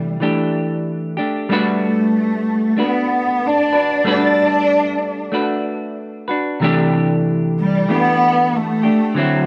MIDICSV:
0, 0, Header, 1, 3, 480
1, 0, Start_track
1, 0, Tempo, 638706
1, 1124, Time_signature, 4, 2, 24, 8
1, 7112, End_track
2, 0, Start_track
2, 0, Title_t, "Clean electric guitar"
2, 0, Program_c, 0, 27
2, 0, Note_on_c, 0, 48, 72
2, 0, Note_on_c, 0, 52, 77
2, 0, Note_on_c, 0, 57, 78
2, 0, Note_on_c, 0, 62, 78
2, 0, Note_on_c, 0, 67, 83
2, 143, Note_off_c, 0, 52, 0
2, 152, Note_on_c, 0, 52, 54
2, 154, Note_off_c, 0, 48, 0
2, 160, Note_off_c, 0, 57, 0
2, 163, Note_on_c, 0, 57, 67
2, 166, Note_off_c, 0, 62, 0
2, 169, Note_off_c, 0, 67, 0
2, 169, Note_on_c, 0, 62, 68
2, 172, Note_on_c, 0, 67, 67
2, 877, Note_off_c, 0, 67, 0
2, 878, Note_off_c, 0, 52, 0
2, 880, Note_on_c, 0, 67, 59
2, 887, Note_off_c, 0, 62, 0
2, 890, Note_on_c, 0, 62, 54
2, 897, Note_off_c, 0, 57, 0
2, 900, Note_on_c, 0, 57, 43
2, 1117, Note_off_c, 0, 57, 0
2, 1120, Note_on_c, 0, 55, 72
2, 1122, Note_off_c, 0, 67, 0
2, 1126, Note_on_c, 0, 57, 81
2, 1127, Note_off_c, 0, 62, 0
2, 1136, Note_on_c, 0, 62, 73
2, 1145, Note_on_c, 0, 66, 81
2, 1150, Note_on_c, 0, 71, 85
2, 2077, Note_off_c, 0, 57, 0
2, 2080, Note_on_c, 0, 57, 51
2, 2085, Note_off_c, 0, 62, 0
2, 2087, Note_off_c, 0, 66, 0
2, 2088, Note_on_c, 0, 62, 53
2, 2093, Note_off_c, 0, 71, 0
2, 2096, Note_on_c, 0, 66, 58
2, 2102, Note_off_c, 0, 55, 0
2, 2102, Note_on_c, 0, 71, 58
2, 2792, Note_off_c, 0, 71, 0
2, 2801, Note_on_c, 0, 71, 53
2, 2804, Note_off_c, 0, 66, 0
2, 2813, Note_on_c, 0, 66, 46
2, 2818, Note_off_c, 0, 62, 0
2, 2821, Note_on_c, 0, 62, 42
2, 2823, Note_off_c, 0, 57, 0
2, 3038, Note_on_c, 0, 55, 72
2, 3042, Note_off_c, 0, 71, 0
2, 3044, Note_off_c, 0, 62, 0
2, 3045, Note_on_c, 0, 57, 84
2, 3048, Note_off_c, 0, 66, 0
2, 3053, Note_on_c, 0, 62, 75
2, 3058, Note_on_c, 0, 66, 84
2, 3065, Note_on_c, 0, 71, 86
2, 3993, Note_off_c, 0, 57, 0
2, 3996, Note_on_c, 0, 57, 62
2, 4002, Note_off_c, 0, 62, 0
2, 4003, Note_off_c, 0, 66, 0
2, 4005, Note_on_c, 0, 62, 61
2, 4009, Note_off_c, 0, 71, 0
2, 4012, Note_on_c, 0, 66, 65
2, 4018, Note_on_c, 0, 71, 59
2, 4019, Note_off_c, 0, 55, 0
2, 4708, Note_off_c, 0, 71, 0
2, 4718, Note_off_c, 0, 66, 0
2, 4718, Note_on_c, 0, 71, 51
2, 4727, Note_on_c, 0, 66, 53
2, 4735, Note_off_c, 0, 62, 0
2, 4738, Note_on_c, 0, 62, 49
2, 4740, Note_off_c, 0, 57, 0
2, 4960, Note_on_c, 0, 48, 80
2, 4961, Note_off_c, 0, 71, 0
2, 4965, Note_off_c, 0, 66, 0
2, 4971, Note_off_c, 0, 62, 0
2, 4971, Note_on_c, 0, 52, 90
2, 4977, Note_on_c, 0, 57, 95
2, 4988, Note_on_c, 0, 62, 91
2, 4991, Note_on_c, 0, 67, 92
2, 5922, Note_off_c, 0, 48, 0
2, 5922, Note_off_c, 0, 52, 0
2, 5925, Note_on_c, 0, 52, 51
2, 5926, Note_off_c, 0, 57, 0
2, 5929, Note_on_c, 0, 57, 50
2, 5935, Note_off_c, 0, 67, 0
2, 5936, Note_off_c, 0, 62, 0
2, 5939, Note_on_c, 0, 62, 52
2, 5944, Note_on_c, 0, 67, 50
2, 6628, Note_off_c, 0, 67, 0
2, 6637, Note_on_c, 0, 67, 53
2, 6644, Note_off_c, 0, 62, 0
2, 6647, Note_on_c, 0, 62, 51
2, 6655, Note_off_c, 0, 57, 0
2, 6658, Note_on_c, 0, 57, 42
2, 6670, Note_off_c, 0, 52, 0
2, 6872, Note_on_c, 0, 50, 75
2, 6880, Note_off_c, 0, 67, 0
2, 6883, Note_off_c, 0, 57, 0
2, 6885, Note_off_c, 0, 62, 0
2, 6886, Note_on_c, 0, 54, 83
2, 6895, Note_on_c, 0, 60, 82
2, 6904, Note_on_c, 0, 64, 72
2, 7112, Note_off_c, 0, 50, 0
2, 7112, Note_off_c, 0, 54, 0
2, 7112, Note_off_c, 0, 60, 0
2, 7112, Note_off_c, 0, 64, 0
2, 7112, End_track
3, 0, Start_track
3, 0, Title_t, "Cello"
3, 0, Program_c, 1, 42
3, 0, Note_on_c, 1, 55, 83
3, 159, Note_off_c, 1, 55, 0
3, 1148, Note_on_c, 1, 57, 86
3, 2119, Note_on_c, 1, 59, 84
3, 2130, Note_off_c, 1, 57, 0
3, 2605, Note_on_c, 1, 62, 94
3, 2616, Note_off_c, 1, 59, 0
3, 3064, Note_off_c, 1, 62, 0
3, 3070, Note_on_c, 1, 62, 99
3, 3987, Note_off_c, 1, 62, 0
3, 5709, Note_on_c, 1, 55, 90
3, 5940, Note_on_c, 1, 59, 102
3, 5952, Note_off_c, 1, 55, 0
3, 6429, Note_on_c, 1, 57, 93
3, 6440, Note_off_c, 1, 59, 0
3, 6904, Note_on_c, 1, 54, 89
3, 6915, Note_off_c, 1, 57, 0
3, 7112, Note_off_c, 1, 54, 0
3, 7112, End_track
0, 0, End_of_file